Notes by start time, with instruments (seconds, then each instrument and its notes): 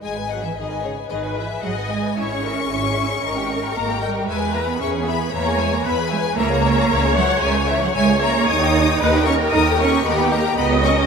0.03 double bass section G#1, cello section G#3, violin section G#4 D#5 G#5
0.16 violin section B4 G#5
0.29 cello section F#3, violin section G#4 D#5 F#5
0.43 cello section E3, violin section B4 E5 G#5
0.56 double bass section G#1, cello section D#3, violin section G#4 D#5
0.69 violin section B4 G#5
0.83 cello section C#3, violin section G#4 C#5 D#5
0.96 violin section B4 G#5
1.10 double bass section G#1, cello section D#3, violin section G#4 D#5, viola section B4
1.23 violin section B4 G#5
1.36 cello section E3, violin section G#4 D#5 E5
1.50 violin section B4 G#5
1.62 double bass section G#1, cello section F#3, violin section G#4 D#5 F#5, viola section D#5
1.76 violin section B4 G#5
1.90 cello section G#3, violin section G#4 D#5 G#5
2.04 violin section B4 G#5
2.17 double bass section G#1, cello section C#4, violin section E4 E5 C#6, viola section C#5
2.31 violin section G#4 C#5
2.44 violin section E4 E5, viola section A#4
2.58 violin section G#4 C#5
2.70 double bass section G#1, violin section E4 E5, viola section G#4
2.84 violin section G#4 C#5
2.97 violin section E4 E5
3.10 violin section G#4 C#5
3.23 double bass section G#1, viola section A#4, violin section A#4 D#5
3.37 violin section G4 G5
3.50 violin section A#4 D#5
3.63 violin section G4 G5
3.75 double bass section G#1, cello section A#3, violin section A#4 D#5 A#5
3.89 violin section G4 G5
4.01 cello section G3, violin section A#4 D#5 G5
4.15 violin section G4 G5
4.27 double bass section E2, cello section G#3, violin section B4 E5 G#5, viola section B4
4.40 violin section G#4 G#5
4.53 cello section A#3, violin section B4 E5 A#5
4.66 cello section B3, violin section G#4 G#5 B5
4.79 double bass section E2, cello section C#4, viola section G#4, violin section B4 E5 C#6
4.92 violin section G#4 G#5
5.06 cello section B3, violin section B4 E5 B5
5.19 violin section G#4 G#5
5.32 double bass section E2, cello section A#3, violin section B4 E5 A#5, viola section C#5
5.45 violin section G#4 G#5
5.59 cello section G#3, violin section B4 E5 G#5
5.72 cello section A#3, violin section G#4 G#5 A#5
5.85 double bass section E2, cello section B3, violin section B4 E5 B5, viola section B4
5.98 violin section G#4 G#5
6.11 cello section G#3, violin section B4 E5 G#5
6.24 violin section G#4 G#5
6.36 double bass section C#2, cello section A#3, violin section A#4 E5 A#5, viola section C#5
6.50 violin section G#4 C#5
6.64 violin section A#4 E5
6.77 violin section G#4 C#5
6.90 double bass section C#2, violin section A#4 E5
7.03 violin section G#4 C#5
7.16 cello section F#3, violin section A#4 E5 F#5
7.29 violin section G#4 C#5
7.42 double bass section C#2, cello section G#3, violin section A#4 E5 G#5
7.55 violin section G#4 C#5
7.67 cello section E3, violin section A#4 E5
7.81 cello section F#3, violin section G#4 C#5 F#5
7.94 double bass section C#2, cello section G#3, violin section A#4 E5 G#5, viola section C#5
8.08 violin section G#4 C#5
8.21 cello section A#3, violin section A#4 E5 A#5
8.35 violin section G#4 C#5
8.48 double bass section D#2, cello section D#4, violin section A#4 D#5 D#6
8.61 violin section G4 G5
8.75 violin section A#4 D#5
8.88 violin section G4 G5
9.01 double bass section D#2, violin section A#4 D#5, viola section B4
9.14 violin section G4 G5
9.26 cello section C#4, violin section A#4 D#5 C#6, viola section A#4
9.40 violin section G4 G5
9.53 double bass section D#2, cello section D#4, violin section A#4 D#5 D#6
9.67 violin section G4 G5
9.79 cello section C#4, violin section A#4 D#5 C#6
9.92 violin section G4 G5
10.05 double bass section D#2, cello section B3, viola section G4, violin section A#4 D#5 B5
10.19 violin section G4 G5
10.32 cello section A#3, violin section A#4 D#5 A#5
10.45 violin section G4 G5
10.57 double bass section C#2, cello section B3, violin section A#4 D#5 B5, viola section D#5
10.72 violin section G4 C#5
10.84 cello section C#4, violin section A#4 D#5 C#6
10.98 violin section G4 C#5